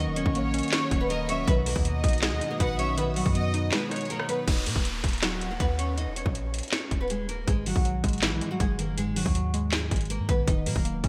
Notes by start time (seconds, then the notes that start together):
Already playing: D#3 F#3 A#3 C#4 A#4 D#5 F#5 C#6
0.00 D#4
0.07 E1
0.16 F#3 C#4 C#5, closed hi-hat
0.26 A#1, kick
0.35 A#3 C#5, closed hi-hat
0.54 C#4, closed hi-hat
0.59 closed hi-hat
0.63 closed hi-hat
0.68 clap, closed hi-hat
0.72 C#4 C#5, snare, closed hi-hat
0.91 D#1 C#4, kick, closed hi-hat
1.01 B3 B4
1.10 A#3 A#4 D#5, closed hi-hat
1.29 F#3 C#4 C#5 E5, closed hi-hat
1.48 B1 D#2 B2 D#3 F#3 B3 F#4 B4 F#5 D#6, kick, closed hi-hat
1.66 F#3 A#3 A#4, open hi-hat
1.76 D#2, kick
1.84 B2 D#5, closed hi-hat
2.04 B1 D#4, kick, closed hi-hat
2.08 closed hi-hat
2.13 closed hi-hat
2.18 clap, closed hi-hat
2.23 G#3 G#4, snare, closed hi-hat
2.32 D#2
2.41 D#4, closed hi-hat
2.50 A#3 A#4
2.60 A#1 B3 B4 F#5, kick, closed hi-hat
2.79 F#3 C#4 C#5 E5, closed hi-hat
2.97 D#3 B3 B4, closed hi-hat
3.16 F#3 F#4, open hi-hat
3.26 F#2, kick
3.35 B3 D#5, closed hi-hat
3.54 D#4, closed hi-hat
3.72 G#3 G#4 B4, snare, clap, closed hi-hat
3.91 D#4 C#5, cross-stick, closed hi-hat
3.96 closed hi-hat
4.01 closed hi-hat
4.05 closed hi-hat
4.10 A#3 A#4, closed hi-hat
4.19 cross-stick
4.29 F#3 B3 B4, closed hi-hat
4.48 D#1 D#4 D#5, kick, closed hi-hat, crash, downlifter
4.66 A#2 A#3 A#4, open hi-hat
4.76 D#1, kick
4.85 closed hi-hat
5.04 D#1, kick, closed hi-hat
5.08 closed hi-hat
5.13 closed hi-hat
5.18 clap, closed hi-hat
5.23 F#3 F#4, snare, closed hi-hat
5.41 closed hi-hat
5.51 A#3 A#4
5.60 D#2 B3 B4, kick, closed hi-hat
5.79 C#4 C#5, closed hi-hat
5.97 D#4 D#5, closed hi-hat
6.07 E1
6.16 C#4 C#5, closed hi-hat
6.26 A#1, kick
6.35 closed hi-hat
6.54 closed hi-hat
6.59 closed hi-hat
6.63 closed hi-hat
6.68 clap, closed hi-hat
6.73 C#4 C#5, snare, closed hi-hat
6.91 D#1, kick, closed hi-hat
7.01 B3 B4
7.10 G#3 G#4, closed hi-hat
7.29 A#3 A#4, closed hi-hat
7.48 G#1 G#2 G#3 G#4, kick, closed hi-hat
7.66 D#3 F#3 F#4, open hi-hat
7.76 B1, kick
7.85 F#3, closed hi-hat
8.04 G#1 G#3, kick, closed hi-hat
8.08 closed hi-hat
8.13 closed hi-hat
8.18 clap, closed hi-hat
8.23 E3 E4, snare, closed hi-hat
8.32 B1
8.41 G#3, closed hi-hat
8.51 F#3 F#4
8.60 F#1 G#3 G#4, kick, closed hi-hat
8.79 D#3 A#3 A#4, closed hi-hat
8.98 G#2 G#3 G#4, closed hi-hat
9.16 D#3 F#3 F#4, open hi-hat
9.26 D#2, kick
9.35 F#3, closed hi-hat
9.54 G#3, closed hi-hat
9.72 G#3 G#4, snare, clap, closed hi-hat
9.91 G#1 G#3, kick, closed hi-hat
9.96 closed hi-hat
10.01 closed hi-hat
10.05 closed hi-hat
10.10 A#3 A#4, closed hi-hat
10.19 G#2
10.29 B1 D#3 B3 B4, kick, closed hi-hat
10.47 D#1 D#3 D#4 D#5, kick, closed hi-hat
10.66 A#2 F#3 A#3 A#4, open hi-hat
10.76 D#1, kick
10.85 A#3, closed hi-hat
11.04 D#1 C#4, kick, closed hi-hat